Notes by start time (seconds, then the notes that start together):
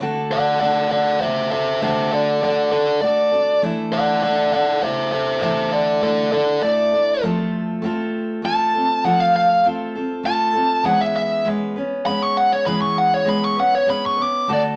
0.00 D3 A3 D4 F#4 A4
0.31 D5 F#5
0.60 A3 D4 F#4 D5 F#5
0.64 A4
0.91 D5 F#5
1.20 A3 D4 F#4 A4 C5 E5
1.50 D4 F#4 A4 C5 E5
1.81 D3 A3 D4 F#4 A4 C5 E5
2.13 A4 D5
2.41 A3 D4 F#4 A4 D5
2.71 D4 F#4 A4 D5
3.01 A3 D4 F#4 A4 D5
3.32 D4 F#4 A4
3.62 E3 A3 D4 E4 A4
3.92 D5 F#5
4.22 A3 D4 E4 A4 D5 F#5
4.51 D4 E4 A4 D5 F#5
4.81 A3 D4 E4 A4 C5 E5
5.12 D4 E4 A4 C5 E5
5.41 E3 A3 D4 E4 A4 C5 E5
5.72 A4 D5
6.01 A3 D4 E4 A4 D5
6.32 E4 A4 D5
6.36 D4
6.61 A3 D4 E4 A4 D5
6.92 D4 E4 A4
7.23 F3 A3 C4 F4 A4
7.82 A3 C4 F4 A4
8.42 A3 C4 F4 A4 A5
8.74 C4 F4 A4
9.04 F3 A3 C4 F4 A4 F#5
9.20 F5
9.36 F5
9.64 A3 C4 F4 A4
9.95 C4 F4 A4
10.23 A3 C4 F4 A4 A5
10.53 C4 F4 A4
10.83 E3 G#3 B3 C#4 B4 F#5
11.01 E5
11.16 E5
11.45 G#3 B3 C#4 B4
11.76 B3 C#4 B4
12.05 G#3 B3 C#4 B5
12.09 B4
12.22 C#6
12.37 F#5
12.52 C#5
12.66 E3 G#3 B3 C#4 B4 B5
12.82 C#6
12.98 F#5
13.14 C#5
13.25 G#3 B3 C#4 B4
13.29 B5
13.44 C#6
13.57 B3 C#4 B4 F#5
13.75 C#5
13.87 G#3 B3 C#4 B4 B5
14.06 C#6
14.16 B3 C#4 B4
14.22 D6
14.47 D3 A3 D4 F#4 A4
14.53 D5